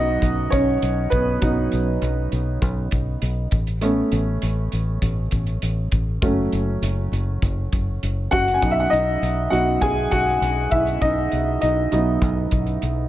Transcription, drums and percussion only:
0.22 kick medium
0.22 closed hi-hat medium
0.52 kick medium
0.52 closed hi-hat medium
0.82 closed hi-hat medium
1.11 kick medium
1.11 closed hi-hat medium
1.42 kick medium
1.42 closed hi-hat medium
1.72 closed hi-hat medium
2.02 closed hi-hat medium
2.32 closed hi-hat medium
2.62 kick medium
2.62 closed hi-hat medium
2.91 kick medium
2.91 closed hi-hat medium
3.22 closed hi-hat medium
3.51 kick medium
3.51 closed hi-hat medium
3.67 closed hi-hat soft
3.81 closed hi-hat medium
4.12 closed hi-hat medium
4.42 closed hi-hat medium
4.72 closed hi-hat medium
5.02 kick medium
5.02 closed hi-hat medium
5.31 kick medium
5.31 closed hi-hat medium
5.47 closed hi-hat soft
5.62 closed hi-hat medium
5.92 kick medium
5.92 closed hi-hat medium
6.22 kick medium
6.22 closed hi-hat medium
6.52 closed hi-hat medium
6.83 closed hi-hat medium
7.13 closed hi-hat medium
7.42 kick medium
7.42 closed hi-hat medium
7.72 kick medium
7.72 closed hi-hat medium
8.03 closed hi-hat medium
8.32 kick medium
8.32 closed hi-hat medium
8.48 closed hi-hat soft
8.62 kick medium
8.62 closed hi-hat medium
8.93 closed hi-hat medium
9.23 closed hi-hat medium
9.53 closed hi-hat medium
9.82 kick medium
9.82 closed hi-hat medium
10.12 kick medium
10.12 closed hi-hat medium
10.27 closed hi-hat soft
10.42 closed hi-hat medium
10.71 kick medium
10.71 closed hi-hat medium
10.87 closed hi-hat soft
11.02 kick medium
11.02 closed hi-hat medium
11.32 closed hi-hat medium
11.62 closed hi-hat medium
11.92 closed hi-hat medium
12.22 kick medium
12.22 closed hi-hat medium
12.51 kick medium
12.51 closed hi-hat medium
12.67 closed hi-hat soft
12.82 closed hi-hat medium

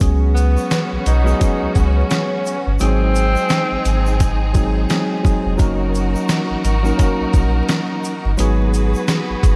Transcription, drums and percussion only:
0.00 kick loud
0.00 closed hi-hat loud
0.00 shaker medium
0.37 shaker medium
0.57 shaker medium
0.71 snare loud
0.71 closed hi-hat medium
0.71 shaker medium
1.06 closed hi-hat medium
1.06 shaker medium
1.27 shaker soft
1.41 kick medium
1.41 closed hi-hat medium
1.41 shaker medium
1.75 kick loud
1.75 shaker medium
2.11 snare loud
2.11 closed hi-hat medium
2.11 shaker medium
2.46 shaker soft
2.46 shaker medium
2.79 closed hi-hat loud
2.79 shaker medium
3.15 shaker medium
3.36 shaker medium
3.49 snare loud
3.49 closed hi-hat medium
3.49 shaker medium
3.85 closed hi-hat medium
3.85 shaker medium
4.06 shaker medium
4.20 kick loud
4.20 closed hi-hat medium
4.20 shaker medium
4.55 kick loud
4.55 shaker medium
4.90 snare loud
4.90 closed hi-hat medium
4.90 shaker medium
5.25 kick loud
5.25 shaker soft
5.25 shaker medium
5.59 kick loud
5.59 closed hi-hat loud
5.59 shaker medium
5.95 shaker medium
6.15 shaker medium
6.29 snare loud
6.29 closed hi-hat medium
6.29 shaker medium
6.65 closed hi-hat medium
6.65 shaker medium
6.65 shaker soft
6.85 shaker soft
6.99 kick medium
6.99 closed hi-hat medium
6.99 shaker medium
7.33 kick loud
7.33 shaker medium
7.69 snare loud
7.69 closed hi-hat medium
7.69 shaker medium
8.04 shaker soft
8.04 shaker medium
8.38 closed hi-hat loud
8.38 shaker medium
8.74 shaker medium
8.95 shaker medium
9.08 snare loud
9.08 closed hi-hat medium
9.08 shaker medium
9.43 kick medium
9.43 closed hi-hat medium
9.43 shaker medium
9.43 shaker soft

